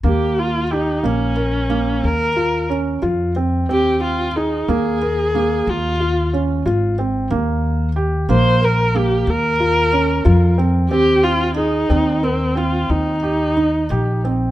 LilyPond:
<<
  \new Staff \with { instrumentName = "Viola" } { \time 11/8 \key ees \mixolydian \tempo 4 = 91 g'8 f'8 ees'8 des'4. bes'4 r4. | g'8 f'8 ees'8 aes'4. f'4 r4. | r4. c''8 bes'8 g'8 bes'2 r8 | g'8 f'8 ees'4 c'8 f'8 ees'2 r8 | }
  \new Staff \with { instrumentName = "Felt piano" } { \time 11/8 \key ees \mixolydian bes4 g'8 bes8 bes'8 bes4 f'8 des'8 f'8 c'8 | c'4 aes'8 bes8 bes'8 bes4 f'8 des'8 f'8 c'8 | bes4 g'8 bes8 bes'8 bes4 f'8 des'8 f'8 c'8 | c'4 aes'8 c'8 bes'8 c'4 g'8 ees'8 g'8 c'8 | }
  \new Staff \with { instrumentName = "Upright bass" } { \clef bass \time 11/8 \key ees \mixolydian ees,4. bes,,4. ees,4. f,4 | ees,4. ees,4. ees,4. aes,,4 | ees,4. bes,,4. ees,4. f,4 | ees,4. ees,4. ees,4. bes,,4 | }
>>